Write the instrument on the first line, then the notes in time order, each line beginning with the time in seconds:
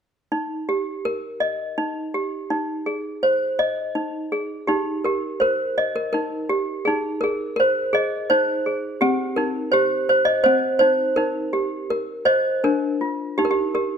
toy piano
0.32 D#4
0.69 G4
1.05 A#4
1.40 D#5
1.78 D#4
2.14 G4
2.50 D#4
2.86 G#4
3.23 C5
3.59 D#5
3.95 D#4
4.32 G#4
4.67 D#4 G4
5.04 G4 A#4
5.40 A#4 C5
5.78 D#5
5.96 A#4
6.13 D#4 A#4
6.49 G4
6.85 D#4 G#4
7.21 G#4 A#4
7.56 A#4 C5
7.93 G#4 D#5
8.30 D#4 C5
8.66 G#4
9.01 C4 G4
9.36 D#4 A#4
9.72 G4 C5
10.09 C5
10.25 D#5
10.44 C4 C5
10.79 D#4 C5
11.16 D#4 A#4
11.53 G4
11.90 A#4
12.25 C5 D#5
12.64 D4 A#4
13.01 F4
13.38 D#4 G4
13.45 A#4
13.51 G4
13.75 G4 A#4